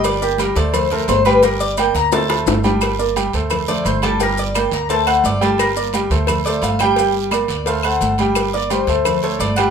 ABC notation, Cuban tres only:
X:1
M:4/4
L:1/8
Q:1/4=173
K:Gm
V:1 name="Cuban tres"
d G B d c B c =B | B d g b a4- | a2 z3 d c A | B d g b a ^f d A |
B4 z d f g- | g z2 d f ^f2 z | z d c3 ^c d ^f |]